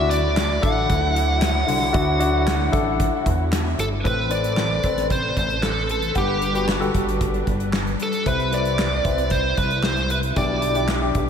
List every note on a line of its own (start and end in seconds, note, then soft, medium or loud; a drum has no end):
0.00 0.59 D2 loud
0.00 0.32 D3 medium
0.00 4.01 D3 medium
0.00 4.01 F#3 medium
0.00 0.62 D4 medium
0.00 0.62 E4 medium
0.00 4.01 E4 medium
0.00 1.93 F#4 loud
0.10 0.64 D5 medium
0.10 closed hi-hat medium
0.37 snare loud
0.37 clap medium
0.37 closed hi-hat medium
0.62 0.87 A1 medium
0.62 1.45 D4 medium
0.62 1.45 E4 medium
0.62 1.45 A4 medium
0.62 3.48 F#5 loud
0.62 kick medium
0.62 closed hi-hat medium
0.90 1.64 D2 loud
0.90 kick loud
0.90 closed hi-hat medium
1.16 closed hi-hat medium
1.42 snare loud
1.42 clap medium
1.42 closed hi-hat loud
1.67 1.92 C2 medium
1.67 2.42 D3 medium
1.67 open hi-hat medium
1.93 2.69 D2 loud
1.93 2.14 D4 medium
1.93 2.14 E4 medium
1.93 2.14 F#4 medium
1.93 kick loud
1.93 closed hi-hat medium
2.19 2.61 D4 medium
2.19 2.61 E4 medium
2.19 2.61 F#4 medium
2.19 closed hi-hat medium
2.47 snare loud
2.47 clap medium
2.47 closed hi-hat medium
2.72 3.10 A1 loud
2.72 3.55 D4 medium
2.72 3.55 E4 medium
2.72 3.55 A4 medium
2.72 kick medium
2.72 closed hi-hat medium
3.00 kick medium
3.00 closed hi-hat medium
3.26 3.75 E2 medium
3.26 kick medium
3.26 closed hi-hat medium
3.53 snare loud
3.53 clap medium
3.53 closed hi-hat loud
3.78 4.03 G1 medium
3.78 3.87 A4 medium
3.78 closed hi-hat medium
4.04 4.80 A1 medium
4.04 4.79 A2 medium
4.04 6.13 C3 medium
4.04 4.25 C4 medium
4.04 4.25 A4 medium
4.04 6.13 A4 medium
4.04 4.25 B4 medium
4.04 10.32 B4 medium
4.04 4.30 B4 medium
4.04 kick medium
4.04 closed hi-hat medium
4.30 4.72 C4 medium
4.30 4.72 A4 soft
4.30 4.72 B4 medium
4.30 5.06 D5 medium
4.30 closed hi-hat medium
4.44 closed hi-hat soft
4.57 snare medium
4.57 clap medium
4.83 5.33 A1 medium
4.83 5.66 C4 medium
4.83 5.66 A4 soft
4.83 5.67 B4 medium
4.83 kick medium
4.83 closed hi-hat medium
4.97 snare soft
4.97 closed hi-hat soft
5.10 5.37 C5 medium
5.10 kick medium
5.10 closed hi-hat medium
5.37 6.11 A1 loud
5.37 5.63 C5 medium
5.37 kick medium
5.37 closed hi-hat medium
5.50 closed hi-hat soft
5.63 5.87 A4 medium
5.63 snare medium
5.63 clap medium
5.89 6.14 A4 medium
5.89 closed hi-hat medium
6.02 closed hi-hat soft
6.15 6.90 G1 loud
6.15 6.90 G2 soft
6.15 8.24 G3 medium
6.15 8.24 D4 medium
6.15 6.46 G4 soft
6.15 6.66 G4 medium
6.15 6.46 B4 medium
6.15 6.46 F#5 medium
6.15 kick medium
6.15 closed hi-hat medium
6.42 closed hi-hat medium
6.54 6.75 F#4 medium
6.54 6.75 G4 medium
6.54 6.75 B4 medium
6.54 closed hi-hat soft
6.68 snare medium
6.68 clap medium
6.80 7.63 F#4 medium
6.80 7.63 G4 medium
6.80 7.63 A4 medium
6.80 closed hi-hat soft
6.94 7.43 G1 medium
6.94 kick medium
6.94 closed hi-hat medium
7.09 closed hi-hat soft
7.21 kick medium
7.21 closed hi-hat medium
7.34 closed hi-hat soft
7.47 7.96 G1 medium
7.47 kick medium
7.47 closed hi-hat medium
7.60 closed hi-hat soft
7.73 snare medium
7.73 clap medium
7.87 closed hi-hat soft
8.00 8.28 A4 medium
8.00 closed hi-hat medium
8.13 closed hi-hat soft
8.25 9.01 C2 loud
8.25 10.34 C3 medium
8.25 9.01 C3 medium
8.25 8.47 C4 medium
8.25 11.30 E4 medium
8.25 8.47 E4 medium
8.25 8.47 B4 medium
8.25 8.54 B4 medium
8.25 kick medium
8.25 closed hi-hat medium
8.40 closed hi-hat soft
8.52 8.93 C4 medium
8.52 8.93 E4 medium
8.52 8.94 B4 medium
8.52 9.34 D5 medium
8.52 closed hi-hat medium
8.65 closed hi-hat soft
8.79 snare loud
8.79 clap medium
9.05 9.54 C2 medium
9.05 9.87 C4 medium
9.05 9.87 E4 medium
9.05 9.88 B4 medium
9.05 kick medium
9.05 closed hi-hat medium
9.18 closed hi-hat soft
9.30 9.58 C5 medium
9.30 kick medium
9.30 closed hi-hat medium
9.57 10.32 C2 loud
9.57 9.84 B4 medium
9.57 kick medium
9.57 closed hi-hat medium
9.71 closed hi-hat soft
9.83 10.11 C5 medium
9.83 snare medium
9.83 clap medium
9.97 closed hi-hat soft
10.10 10.18 B4 medium
10.10 closed hi-hat medium
10.23 closed hi-hat soft
10.36 11.11 B1 loud
10.36 11.11 B2 medium
10.36 11.30 D3 medium
10.36 11.30 G3 medium
10.36 10.67 D4 medium
10.36 10.67 E4 medium
10.36 10.67 G4 medium
10.36 10.86 D5 medium
10.36 kick medium
10.36 closed hi-hat medium
10.62 closed hi-hat medium
10.75 10.96 D4 medium
10.75 10.96 E4 medium
10.75 10.96 G4 medium
10.75 closed hi-hat soft
10.88 snare loud
10.88 clap medium
11.01 11.30 D4 medium
11.01 11.30 E4 medium
11.01 11.30 G4 medium
11.15 11.30 B1 medium
11.15 kick medium
11.15 closed hi-hat medium